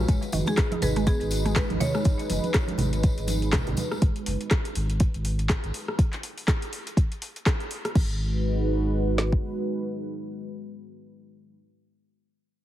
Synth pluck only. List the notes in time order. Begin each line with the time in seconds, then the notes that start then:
0.08 G#3
0.33 D#3
0.47 G#3
0.72 D#4
0.82 G#4
0.96 G#3
1.07 B3
1.46 G#3
1.80 D#3
1.95 G#3